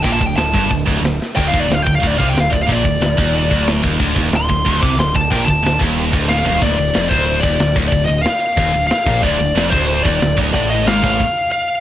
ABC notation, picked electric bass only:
X:1
M:4/4
L:1/8
Q:1/4=183
K:Dphr
V:1 name="Picked electric bass" clef=bass
B,,, D,,, D,,, G,,, D,,, D,,, D,,, z | D,,, E,,, D,,, D,,, D,,, C,, D,,, D,,, | B,,, D,,, D,,, E,,,2 D,,,2 E,,, | D,,, E,,, D,,, D,,, D,,, C,, D,,, D,,, |
B,,, D,,, D,,, E,,,2 D,,,2 E,,, | D,,, D,,, F,,, D,,,2 E,,, D,,, D,,, | D,,, D,,, z2 E,,, D,,, z B,,, | D,,, D,,, F,,, D,,,2 E,,, D,,, D,,, |
A,,,2 ^G,,, A,,, z4 |]